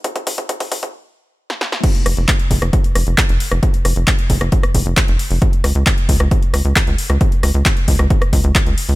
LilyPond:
<<
  \new Staff \with { instrumentName = "Analog synth bass" } { \clef bass \time 4/4 \key des \lydian \tempo 4 = 134 r1 | r8 f,,16 f,,16 r8 f,,16 f,,16 r8 f,,16 f,,16 r16 f,,16 r16 f,,16 | r8 f,,16 f,,16 r8 f,,16 f,,16 r8 f,,16 f,,16 r16 f,,16 r16 f,,16 | r8 des,16 des,16 r8 des,16 des,16 r8 des,16 des,16 r16 des,16 r16 des,16 |
r8 des,16 des,16 r8 des,16 des,16 r8 des,16 des,16 r16 des,16 r16 des,16 | }
  \new DrumStaff \with { instrumentName = "Drums" } \drummode { \time 4/4 <hh bd>16 <hh bd>16 <hho bd>16 <hh bd>16 <hh bd>16 <hho bd>16 <hho bd>16 <hh bd>16 r4 r16 sn16 sn16 sn16 | <cymc hh bd>16 hh16 <hho ss>16 hh16 <hc hh bd>16 hh16 <hho bd>16 <hh ss>16 <hh bd>16 hh16 <hho ss>16 hh16 <hc hh bd>16 hh16 hho16 <hh ss>16 | <hh bd>16 hh16 <hho ss>16 hh16 <hc hh bd>16 hh16 <hho bd>16 <hh ss>16 <hh bd>16 <hh ss>16 <hho bd>16 hh16 <hc hh bd>16 hh16 hho16 hho16 | <hh bd>16 hh16 <hho ss>16 hh16 <hc hh bd>16 hh16 <hho bd>16 <hh ss>16 <hh bd>16 hh16 <hho ss>16 hh16 <hc hh bd>16 hh16 hho16 <hh ss>16 |
<hh bd>16 hh16 <hho ss>16 hh16 <hc hh bd>16 hh16 <hho bd>16 <hh ss>16 <hh bd>16 <hh ss>16 <hho bd>16 hh16 <hc hh bd>16 hh16 hho16 hho16 | }
>>